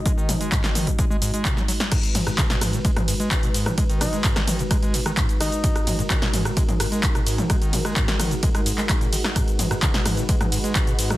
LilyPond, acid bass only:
\new Staff \with { instrumentName = "Acid bass" } { \clef bass \time 4/4 \key gis \minor \tempo 4 = 129 gis16 dis16 gis,16 gis16 gis,16 dis16 dis16 gis,16 gis16 gis16 gis,16 gis16 b,16 gis16 fis16 r16 | gis,16 r16 gis,16 gis,16 cis16 b,16 gis,16 ais,16 gis16 gis,16 gis,16 gis16 r16 b,16 gis,16 ais,16 | gis16 dis16 gis,16 gis16 gis,16 dis16 dis16 gis,16 gis16 gis16 gis,16 dis16 gis,16 r16 dis16 r16 | gis,16 r16 gis,16 gis,16 cis16 b,16 gis,16 ais,16 gis16 gis,16 gis,16 gis16 r16 b,16 gis,16 ais,16 |
gis16 dis16 gis,16 gis16 gis,16 dis16 dis16 gis,16 gis16 gis16 gis,16 gis16 gis16 ais,16 dis16 r16 | gis,16 r16 gis,16 gis,16 cis16 b,16 gis,16 ais,16 gis16 gis,16 gis,16 gis16 r16 b,16 gis,16 ais,16 | }